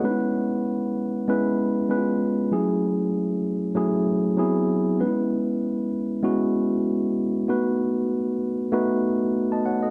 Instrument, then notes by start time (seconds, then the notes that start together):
tine electric piano
Already playing: C#5 F#5
0.03 G#3 B3 C#4 D#4 B4
0.11 E4
1.28 G#3 B3 C#4 E4 B4
1.89 G#3 B3 C#4 E4 B4
1.97 F4
2.52 F#3 A3 C#4 E4 G#4
3.75 F#3 A3 C#4 E4 G#4
4.37 F#3 B3 C4 E4 G#4
4.99 G#3 B3 C#4 D#4 B4
5.07 E4
6.23 G#3 B3 C#4 E4 F#4
7.48 A3 B3 D#4 F#4 B4
8.72 A3 B3 D#4 F#4 B4
9.52 D#5 A5
9.66 C#5 F#5
9.83 A4 D#5